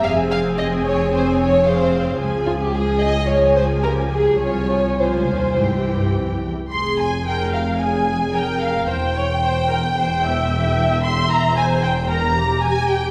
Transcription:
<<
  \new Staff \with { instrumentName = "Violin section" } { \time 4/4 \key f \minor \tempo 4 = 111 aes''4 aes''2 f''4 | aes''4 aes''4 aes''2 | aes''4 aes''4 g''4. r8 | c'''8 aes''8 g''8 f''8 aes''4 g''8 f''8 |
g''1 | c'''8 bes''8 aes''8 g''8 bes''4 aes''8 g''8 | }
  \new Staff \with { instrumentName = "Violin section" } { \time 4/4 \key f \minor f''8 f''8 ees''8 des''8 c''8 des''8 c''4 | r8 f'16 g'16 aes'8 ees''8 des''8 c''8 bes'8 aes'8 | des''4 c''2 r4 | c'''8 aes''8 g''8 f''8 aes''4 g''8 f''8 |
g''1 | c'''8 bes''8 aes''8 g''8 bes''4 aes''8 g''8 | }
  \new Staff \with { instrumentName = "Viola section" } { \time 4/4 \key f \minor << { aes'2. aes'4 | aes'4 aes'4 aes'4 g'4 | f'4 f'4 g'4. r8 | aes'4 bes'4 aes'4 bes'4 |
c''8 cis''8 c''8 bes'8 c''8 e''4.~ | e''4 c''4 bes'8 g'4. | } \\ { c'2 c'4 c'4 | f4 f4 f2 | f4 f4 e4. r8 | r1 |
r1 | r1 | } >> }
  \new Staff \with { instrumentName = "Cello section" } { \clef bass \time 4/4 \key f \minor f,1 | des,1 | c,4 c,16 des,16 ees,8 aes,8 g,8 f,8 e,8 | f,1 |
e,1~ | e,1 | }
  \new Staff \with { instrumentName = "Double bass section" } { \clef bass \time 4/4 \key f \minor f,,1 | des,1 | c,2.~ c,8 r8 | f,,1 |
e,,1~ | e,,1 | }
>>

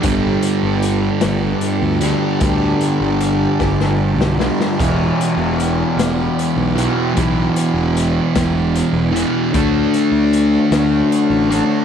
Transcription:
<<
  \new Staff \with { instrumentName = "String section" } { \time 6/8 \key e \dorian \tempo 4. = 51 << { <b g' a' d''>2.~ | <b g' a' d''>2.~ | <b g' a' d''>2.~ | <b g' a' d''>2. |
<a fis' cis''>2. | } \\ { r2. | r2. | e'2.~ | e'2. |
d'2. | } >> }
  \new Staff \with { instrumentName = "Distorted electric guitar" } { \clef bass \time 6/8 \key e \dorian <g, d g>2~ <g, d g>8 <g, d g>8 | <g, d g>2~ <g, d g>8 <g, d g>8 | <e, b, e>2~ <e, b, e>8 <e, b, e>8 | <e, b, e>2~ <e, b, e>8 <e, b, e>8 |
<d a d'>2~ <d a d'>8 <d a d'>8 | }
  \new Staff \with { instrumentName = "Fingered electric bass" } { \clef bass \time 6/8 \key e \dorian g,,8 r16 g,,8. g,,8 r16 d,8 r16 | d,8 r16 g,,8. g,,8. b,,8 r16 | e,,8 r16 e,,8. e,,8 r16 b,,8 r16 | b,,8 r16 e,,8. e,,8. e,,8 r16 |
d,8 r16 d,8. d,8 r16 a,,8 r16 | }
  \new DrumStaff \with { instrumentName = "Drums" } \drummode { \time 6/8 <hh bd>8 hh8 hh8 <hh sn>8 hh8 hh8 | <hh bd>8 hh8 hh8 <bd sn>16 sn8 sn16 sn16 sn16 | <cymc hh bd>8 hh8 hh8 <hh sn>8 hh8 hh8 | <hh bd>8 hh8 hh8 <hh bd sn>8 hh8 hh8 |
<hh bd>8 hh8 hh8 <hh sn>8 hh8 hh8 | }
>>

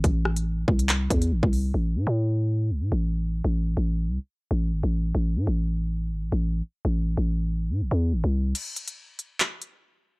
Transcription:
<<
  \new Staff \with { instrumentName = "808-style bass" } { \clef bass \time 4/4 \key a \minor \tempo 4 = 141 a,,4. c,4 e,8 gis,,16 c,8. | a,,8 a,16 a,4. c,16 a,16 a,,4~ a,,16 | a,,8. a,,8. c,16 r8. a,,8 gis,,16 a,,8. | a,,8 a,16 a,,4. gis,,16 a,,16 a,,8. r8 |
a,,8. a,,4~ a,,16 a,16 a,,16 e,8 gis,,16 c,8. | r1 | }
  \new DrumStaff \with { instrumentName = "Drums" } \drummode { \time 4/4 <hh bd>8 ss16 hh16 r8 bd16 hh16 <hc hh>8 <hh bd>16 hh16 r16 bd16 hho8 | r4 r4 r4 r4 | r4 r4 r4 r4 | r4 r4 r4 r4 |
r4 r4 r4 r4 | <cymc hh>8 hh16 hh16 r8 hh8 <hc hh>8 hh8 r4 | }
>>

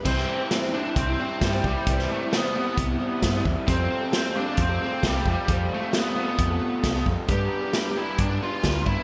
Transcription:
<<
  \new Staff \with { instrumentName = "Steel-string acoustic guitar" } { \time 4/4 \key c \major \tempo 4 = 133 <c e g c' e' c''>8. <g c' e' c''>16 <c e g c' e' c''>8 <g c' e' c''>16 <g c' e' c''>8 <g c' e' c''>16 <g c' e' c''>8 <c e g c' e' c''>16 <g c' e' c''>16 <g c' e' c''>8 | <c e g c' e' c''>8. <g c' e' c''>16 <c e g c' e' c''>8 <g c' e' c''>16 <g c' e' c''>8 <g c' e' c''>16 <g c' e' c''>8 <c e g c' e' c''>16 <g c' e' c''>16 <g c' e' c''>8 | <f g c' g' a'>8. <c' g' a'>16 <f g c' g' a'>8 <g c' g' a'>16 <g' a'>8 <c' g' a'>16 <g c' g' a'>16 <c' g' a'>16 <f g c' g' a'>16 <c' g' a'>16 <g c' g' a'>8 | <f g c' g' a'>8. <c' g' a'>16 <f g c' g' a'>8 <g c' g' a'>16 <c' g' a'>8 <c' g' a'>16 <g c' g' a'>8 <f g c' g' a'>16 <c' g' a'>16 <g c' g' a'>8 |
<g d' g' b'>8. <d' g' b'>16 <g d' g' b'>8 <g d' g' b'>8. <d' g' b'>16 <g d' g' b'>16 <d' g' b'>16 <g d' g' b'>16 <d' g' b'>16 <g d' g' b'>8 | }
  \new Staff \with { instrumentName = "Lead electric guitar" } { \time 4/4 \key c \major c'4. d'8 c'8 c'8 g8 g8~ | g8 a8 b8 b2 r8 | c'4 c'8 d'8 c'8 c'8 g8 g8~ | g8 a8 b8 b2 r8 |
g'4. e'8 d'8 f'4 e'8 | }
  \new Staff \with { instrumentName = "Overdriven electric guitar" } { \clef bass \time 4/4 \key c \major <c e g c' e'>4. <c e g c' e'>2~ <c e g c' e'>8 | <c e g c' e'>4. <c e g c' e'>2~ <c e g c' e'>8 | <f, c f a c' f'>4. <f, c f a c' f'>2~ <f, c f a c' f'>8 | <f, c f a c' f'>4. <f, c f a c' f'>2~ <f, c f a c' f'>8 |
<g, d g b d' g'>4. <g, d g b d' g'>2~ <g, d g b d' g'>8 | }
  \new Staff \with { instrumentName = "Fingered electric bass" } { \clef bass \time 4/4 \key c \major c,8 r4. c,8 r8 g,8 c,16 r16 | c,8 r4. c,8 r8 g,8 e,16 r16 | f,8 r4. f,8 r8 c,8 f,16 r16 | f,8 r4. f,8 r8 c,8 f,16 r16 |
g,8 r4. g,8 r8 d,8 g,16 r16 | }
  \new DrumStaff \with { instrumentName = "Drums" } \drummode { \time 4/4 <cymc bd>16 sn8. <hh sn>4 <hh bd>4 <hh bd sn>8 bd8 | <hh bd>16 sn8. <hh sn>4 <hh bd>4 <hh bd sn>8 bd8 | <hh bd>4 <hh sn>4 <hh bd>4 <hh bd sn>8 bd8 | <hh bd>4 <hh sn>4 <hh bd>4 <hh bd sn>8 bd8 |
<hh bd>4 <hh sn>4 <hh bd>4 <hh bd sn>8 bd8 | }
>>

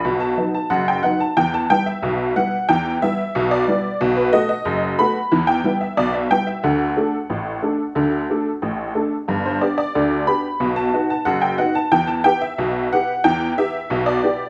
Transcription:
<<
  \new Staff \with { instrumentName = "Honky-tonk piano" } { \time 2/4 \key e \minor \tempo 4 = 91 b''16 a''8 a''16 fis''16 g''16 fis''16 a''16 | g''16 a''16 g''16 e''8. fis''8 | g''8 e''8. d''8. | r16 b'16 ees''16 ees''8. b''8~ |
b''16 g''8 e''16 d''16 e''16 g''16 e''16 | fis''2~ | fis''4 r4 | r16 c''16 d''16 d''8. b''8~ |
b''16 a''8 a''16 fis''16 g''16 fis''16 a''16 | g''16 a''16 g''16 e''8. fis''8 | g''8 e''8. d''8. | }
  \new Staff \with { instrumentName = "Honky-tonk piano" } { \time 2/4 \key e \minor <b,, b,>8 <fis b dis'>8 <fis,, fis,>8 <fis b dis'>8 | <e, e>8 <g b e'>8 <b,, b,>8 <g b e'>8 | <e, e>8 <g b e'>8 <b,, b,>8 <g b e'>8 | <b,, b,>8 <a b fis'>8 <fis,, fis,>8 <a b fis'>8 |
<e, e>8 <g b e'>8 <b,, b,>8 <g b e'>8 | <d, d>8 <a d' a'>8 <a,, a,>8 <a d' a'>8 | <d, d>8 <a d' a'>8 <a,, a,>8 <a d' a'>8 | <g,, g,>8 <b d' g'>8 <d, d>8 <b d' g'>8 |
<b,, b,>8 <b dis' fis'>8 <fis,, fis,>8 <b dis' fis'>8 | <e, e>8 <b e' g'>8 <b,, b,>8 <b e' g'>8 | <e, e>8 <b e' g'>8 <b,, b,>8 <b e' g'>8 | }
>>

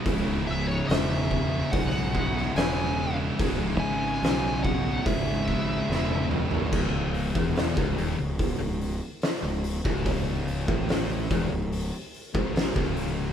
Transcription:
<<
  \new Staff \with { instrumentName = "Lead electric guitar" } { \time 4/4 \key cis \minor \tempo 4 = 72 r8 e''16 cis''16 e''4 fis''4 gis''8. r16 | r8 gis''4 fis''8 e''4. r8 | r1 | r1 | }
  \new Staff \with { instrumentName = "Distorted electric guitar" } { \clef bass \time 4/4 \key cis \minor <cis, gis, cis>2 <cis, gis, cis>2 | <cis, gis, cis>2 <cis, gis, cis>2 | r1 | r1 | }
  \new Staff \with { instrumentName = "Distorted electric guitar" } { \clef bass \time 4/4 \key cis \minor <cis, gis, cis gis e'>2~ <cis, gis, cis gis e'>8 <cis, gis, cis gis e'>8 <cis, gis, cis gis e'>4 | <cis, gis, cis gis e'>2~ <cis, gis, cis gis e'>8 <cis, gis, cis gis e'>8 <cis, gis, cis gis e'>4 | cis,8. e,8 cis,16 dis,16 cis,8 cis,8 r8 cis,8 cis,16~ | cis,8. a,8. e,16 cis,8 r8 gis,8 cis,8. | }
  \new Staff \with { instrumentName = "Distorted electric guitar" } { \clef bass \time 4/4 \key cis \minor <cis, gis, cis>1 | <cis, gis, cis>1 | cis,8. e,8 cis,16 dis,16 cis,8 cis,8 r8 cis,8 cis,16~ | cis,8. a,8. e,16 cis,8 r8 gis,8 cis,8. | }
  \new Staff \with { instrumentName = "Fingered electric bass" } { \clef bass \time 4/4 \key cis \minor cis,,4 e,,4 b,,4 e,,4 | cis,,8 gis,,8 b,,4 gis,,4 e,,4 | cis,,8. e,,8 cis,,16 dis,,16 cis,,8 cis,,8 r8 cis,,8 cis,,16~ | cis,,8. a,,8. e,,16 cis,,8 r8 gis,,8 cis,,8. | }
  \new DrumStaff \with { instrumentName = "Drums" } \drummode { \time 4/4 <hho bd>4 <hho sn>8 bd8 <hho bd>8 bd16 sn16 <hho sn>4 | <hho bd>4 <hho sn>8 bd8 <hho bd>8 bd8 sn16 tommh16 toml16 tomfh16 | <cymc bd>8 hho16 bd16 <hho sn>16 bd16 hho8 <hho bd>8 hho8 <hho sn>8 hho16 bd16 | <hho bd>8 hho16 bd16 <hho sn>8 <hho bd>8 hho8 hho16 bd16 <hho sn>16 bd16 hho8 | }
>>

